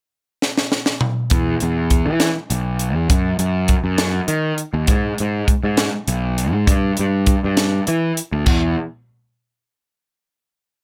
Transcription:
0.42 snare
0.58 snare
0.72 snare
0.86 snare
1.01 mid tom
1.30 picked electric bass E2, kick, closed hi-hat
1.60 picked electric bass E2, closed hi-hat
1.90 kick, closed hi-hat
2.06 picked electric bass E3
2.20 snare, closed hi-hat
2.50 picked electric bass B1, closed hi-hat
2.79 closed hi-hat
2.95 picked electric bass E2
3.09 picked electric bass F#2, kick, closed hi-hat
3.39 picked electric bass F#2, closed hi-hat
3.68 kick, closed hi-hat
3.84 picked electric bass F#2
3.98 snare, closed hi-hat
4.28 picked electric bass D#3, closed hi-hat
4.58 closed hi-hat
4.74 picked electric bass D#2
4.87 picked electric bass G#2, kick, closed hi-hat
5.18 picked electric bass G#2, closed hi-hat
5.48 kick, closed hi-hat
5.63 picked electric bass G#2
5.77 snare, closed hi-hat
6.08 picked electric bass B1, closed hi-hat
6.38 closed hi-hat
6.52 picked electric bass G#2
6.67 picked electric bass G2, kick, closed hi-hat
6.97 picked electric bass G2, closed hi-hat
7.26 kick, closed hi-hat
7.44 picked electric bass G2
7.57 snare, closed hi-hat
7.87 picked electric bass E3, closed hi-hat
8.17 closed hi-hat
8.32 picked electric bass D2
8.46 picked electric bass E2, kick, crash

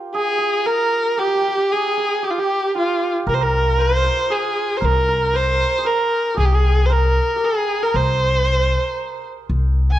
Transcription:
Already playing: santur F4 G4 A#4
0.14 santur G#4, kamancheh G#4
0.38 santur G#4
0.66 santur A#4, kamancheh A#4
1.17 santur G4, kamancheh G4
1.27 santur G4
1.35 santur G4
1.41 santur G4
1.48 santur G4
1.57 santur G4
1.72 kamancheh G#4, santur G#4
1.97 santur G#4
2.23 santur G4, kamancheh G4
2.30 kamancheh F4
2.38 santur G4, kamancheh G4
2.75 santur F4, kamancheh F4
3.27 upright bass C2, santur A#4, kamancheh A#4
3.34 kamancheh C5
3.41 santur A#4, kamancheh A#4
3.78 santur C5, kamancheh C5
3.85 santur A#4
3.91 santur C5
4.04 santur A#4
4.30 santur G#4, kamancheh G#4
4.77 santur A#4, kamancheh C5
4.82 upright bass C2, kamancheh A#4
5.08 santur A#4
5.33 santur C5, kamancheh C5
5.78 santur G#4
5.85 santur A#4, kamancheh A#4
6.34 upright bass C2, santur G4 G#4
6.39 kamancheh G#4
6.45 kamancheh G4
6.53 santur G#4, kamancheh G#4
6.86 kamancheh C5
6.90 santur A#4, kamancheh A#4
7.36 santur G4
7.44 santur G#4, kamancheh G#4
7.82 santur A#4, kamancheh A#4
7.94 upright bass C2, santur C5, kamancheh C5
9.49 upright bass C2
9.91 kamancheh G#5

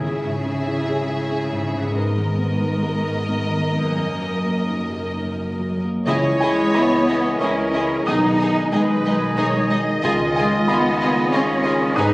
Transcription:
Already playing: harp C#3 C#4 E4 G#4
0.01 double bass section C#2, felt piano C#2, cello section C#3, viola section C#4, violin section G#4 E5
0.23 felt piano G#2
0.46 felt piano C#4
0.67 felt piano E4
0.88 felt piano G#4
1.09 felt piano E4
1.31 felt piano C#4
1.53 felt piano G#2
1.73 felt piano C#4
1.78 harp G#2
1.82 harp B3
1.91 double bass section G#1, felt piano G#2, harp A#4
1.96 cello section G#2, viola section B3, violin section A#4 D#5
2.18 felt piano D#3
2.38 felt piano B3
2.60 felt piano D#4
2.83 felt piano A#4
3.05 felt piano D#4
3.28 felt piano B3
3.49 felt piano D#3
3.72 felt piano B3
3.77 harp F#2
3.82 harp A#3
3.86 harp F#4
3.91 harp A#4
3.95 double bass section F#1, felt piano F#2, cello section F#2, viola section A#3
4.19 felt piano F#3
4.44 felt piano A#3
4.67 felt piano D#4
4.90 felt piano A#4
5.13 felt piano D#4
5.36 felt piano A#3
5.59 felt piano F#3
5.83 felt piano A#3
6.06 felt piano C#2, double bass section C#2, harp C#3, french horn section E3 D#5, clarinet E4, violin section E4 G#4 D#5, viola section C#5, oboe D#5
6.30 harp C#4
6.40 cello section G#3, violin section E4 G#4 D#5, felt piano G#5
6.52 harp G#3
6.75 double bass section C#2, felt piano G#3 E4 D#5 B5, cello section B3, harp E4, violin section E4 G#4 D#5
6.96 harp D#5
7.08 violin section E4 G#4 D#5
7.19 harp G#4
7.40 double bass section C#2, felt piano G#3 E4 D#5 C#6, cello section C#4, clarinet E4, violin section E4 G#4 D#5, viola section A#4, harp C#5, oboe D#5
7.62 harp G#4
7.73 violin section E4 G#4 D#5
7.84 harp D#5
8.05 double bass section B1, felt piano B1 D#6, harp B2, french horn section D#3, clarinet D#4, cello section D#4, violin section D#4 G#4 D#5, viola section G#4, oboe D#5
8.28 harp B3
8.40 violin section D#4 G#4 D#5
8.50 harp G#3
8.72 double bass section B1, cello section G#3, felt piano G#3 D#4 D#5 G#5, clarinet D#4, harp D#4, violin section D#4 G#4 D#5, viola section B4, oboe D#5
9.05 violin section D#4 G#4 D#5
9.16 harp G#4
9.37 double bass section B1, felt piano G#3 D#4 D#5, violin section D#4 G#4 D#5, viola section C#5
9.59 harp G#4
9.70 violin section D#4 G#4 D#5, viola section D#5
10.02 double bass section C#2, felt piano C#2, harp C#3, french horn section F4, violin section F4 G#4 D#5, clarinet F4, oboe D#5
10.25 harp C#4
10.36 cello section G#3, violin section F4 G#4 D#5, felt piano G#5
10.46 harp G#3
10.67 double bass section C#2, felt piano G#3 F4 D#5 B5, cello section B3, violin section F4 G#4 D#5, harp F4
10.89 harp C#5
11.01 violin section F4 G#4 D#5
11.10 harp G#4
11.31 double bass section C#2, felt piano G#3 F4 D#5 C#6, cello section C#4, clarinet F4, violin section F4 G#4 D#5, viola section C#5, oboe D#5, harp F5
11.53 harp G#4
11.63 violin section F4 G#4 D#5, viola section A#4
11.95 double bass section G#1, harp G#2, felt piano G#2 D#6, french horn section D#3 G#4, cello section D#4, clarinet D#4, violin section D#4 G#4 B4, oboe B4, viola section B4

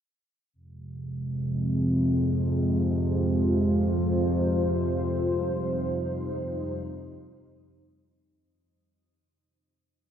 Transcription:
0.53 synth drone F2 C3, ambient pad G#3
2.07 ambient pad F4
2.31 ambient pad C5
4.42 ambient pad F2
4.77 ambient pad G3
4.92 ambient pad D#4

